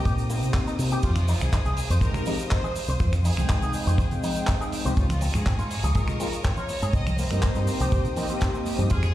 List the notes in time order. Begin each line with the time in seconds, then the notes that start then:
Already playing: A#3 C4 D#4 G4 C5 G5 A#5 D#6
0.05 A#2 G4, kick, closed hi-hat, shaker
0.18 closed hi-hat, shaker
0.30 A#3, open hi-hat, shaker
0.43 C3, closed hi-hat, shaker
0.54 A#3, kick, clap, closed hi-hat, shaker
0.67 D#4, closed hi-hat, shaker
0.79 C3, open hi-hat, shaker
0.91 A#3 C4 D#4 G4, closed hi-hat, shaker
1.03 F2 F4 F5, kick, closed hi-hat, crash, shaker
1.16 finger snap, closed hi-hat, high conga, shaker
1.28 D#4, open hi-hat, shaker
1.40 C2 G#4, finger snap, closed hi-hat, muted conga, shaker
1.53 D#4, kick, clap, closed hi-hat, shaker
1.65 C2 G#4, closed hi-hat, shaker
1.77 G#4, open hi-hat, shaker
1.90 F2 C5, closed hi-hat, muted conga, shaker
2.01 G#3 C4 D#4 G4 A#4 C5, kick, closed hi-hat, shaker
2.14 finger snap, closed hi-hat, low conga, shaker
2.26 G#3 C4 D#4 G4, open hi-hat, muted conga, high conga, shaker
2.39 closed hi-hat, shaker
2.51 D#4 C5, kick, clap, closed hi-hat, shaker
2.64 G#4, muted conga, shaker
2.76 muted fingered electric bass stroke, open hi-hat, shaker
2.88 C2 C5, closed hi-hat, shaker
3.00 F2 F4 C5, kick, closed hi-hat, shaker
3.13 finger snap, closed hi-hat, high conga, shaker
3.25 D#4 G#4, open hi-hat, shaker
3.37 C2 G#3 C4 D#4 G5, finger snap, closed hi-hat, muted conga, shaker
3.49 D#4, kick, clap, closed hi-hat, shaker
3.62 C2 G#4, closed hi-hat, shaker
3.73 muted fingered electric bass stroke, open hi-hat, shaker
3.87 F2 C5, closed hi-hat, muted conga, high conga, shaker
3.98 C5, kick, closed hi-hat, shaker
4.11 closed hi-hat, low conga, shaker
4.23 D#4, open hi-hat, high conga, shaker
4.36 closed hi-hat, shaker
4.47 D#4, kick, clap, closed hi-hat, shaker
4.61 G#4, shaker
4.72 muted fingered electric bass stroke, open hi-hat, shaker
4.84 C2 G#3 C4 D#4 G4 C5, closed hi-hat, muted conga, high conga, shaker
4.97 C#2 C#4 F4 A#5 C#6 D#6, kick, closed hi-hat, shaker
5.09 finger snap, closed hi-hat, high conga, shaker
5.21 C4, open hi-hat, shaker
5.34 G#2 G#4, finger snap, closed hi-hat, muted conga, shaker
5.46 C4, kick, clap, closed hi-hat, shaker
5.59 G#2 F4, closed hi-hat, shaker
5.71 G#4, open hi-hat, shaker
5.83 C#2 G#4, closed hi-hat, muted conga, shaker
5.95 G#3 A#3 D#4 F4 G#4 A#4, kick, closed hi-hat, shaker
6.08 finger snap, closed hi-hat, low conga, shaker
6.20 G#3 A#3 C4 D#4 F4, open hi-hat, muted conga, high conga, shaker
6.33 closed hi-hat, shaker
6.44 C4 C#5, kick, clap, closed hi-hat, shaker
6.57 F4, muted conga, shaker
6.69 muted fingered electric bass stroke, open hi-hat, shaker
6.82 G#2 G#4, closed hi-hat, shaker
6.93 C2 C4 C5 D#5 G5 D#6, kick, closed hi-hat, shaker
7.07 finger snap, closed hi-hat, high conga, shaker
7.18 A#3 C5, open hi-hat, shaker
7.30 G2 A#3 C4 D#4 G4, finger snap, closed hi-hat, muted conga, shaker
7.42 A#3, kick, clap, closed hi-hat, shaker
7.55 G2 D#4, closed hi-hat, shaker
7.67 muted fingered electric bass stroke, open hi-hat, shaker
7.80 C2 G4, closed hi-hat, muted conga, high conga, shaker
7.92 G4, kick, closed hi-hat, shaker
8.05 closed hi-hat, low conga, shaker
8.16 A#3 C4 D#4 G4, open hi-hat, high conga, shaker
8.28 A#3 C4 D#4 G4, closed hi-hat, shaker
8.41 C4, kick, clap, closed hi-hat, shaker
8.54 C4, shaker
8.66 muted fingered electric bass stroke, open hi-hat, shaker
8.78 G2 C4, closed hi-hat, muted conga, high conga, shaker
8.90 F2 F4 G#4 F5, kick, closed hi-hat, shaker
9.03 finger snap, closed hi-hat, high conga, shaker